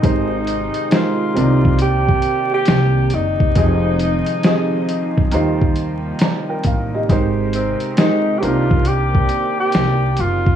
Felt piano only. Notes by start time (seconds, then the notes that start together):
0.02 G#3 D#4 G4 A#4 C5
0.90 G#3 D#4 G4 A#4 C5
1.34 C3 C4 D4 A#4 D5
1.42 D#4
3.55 F3 C4 G4 G#4 D#5
4.44 F3 C4 G4 G#4 D#5
5.32 D#3 D#4 F4 G4 C5
6.21 D5 A#5
6.49 A#4 G5
6.67 F5
6.94 G4 D#5
7.09 G#3 D#4 G4 A#4 C5
7.97 G#3 D#4 G4 A#4 C5
8.40 C3 C4 D4 D#4 A#4